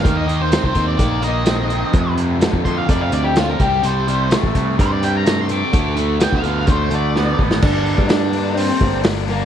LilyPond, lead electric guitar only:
\new Staff \with { instrumentName = "Lead electric guitar" } { \time 4/4 \key g \minor \tempo 4 = 127 f''16 ees''8 c''8 c''8 d''8. ees''4.~ | ees''8 r4 c'''16 f''16 d''16 f''16 d''16 g'16 f'16 bes'16 g'8 | c''4 r4 c''16 d''16 g''16 bes''8 c'''16 d'''8~ | d'''8 r8 g''16 f''8 f''16 c''8 d''4 r8 |
d'4 d'4 c'4 r8 bes8 | }